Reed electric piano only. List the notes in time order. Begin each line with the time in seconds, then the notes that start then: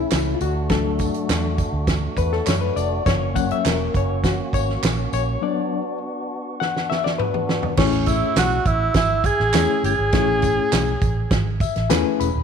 Already playing: E3 A3 C#4 E4
0.35 F4
0.42 F#4
0.70 F#3 A3 D4 A4
2.18 B4
2.33 A4
2.47 C#5
2.61 B4
2.76 D5
3.06 C#5
3.34 F#3 A#3 C#4 F#5
3.52 E5
3.66 A#4
3.97 C#5
4.25 F#4
4.54 C#5
5.14 C#5
5.41 F#3 B3 D4 D5
6.60 F#5
6.90 E5
7.04 D5
7.18 B4
7.78 A2 A3 C#4 E4 G#4 C#5
9.54 A3 C#4 E4 G#4 C#5
10.14 A2 A3 C#4 E4 G#4 C#5
11.61 E5
11.90 A3 C#4 E4 G#4 B4 G#5
12.20 B5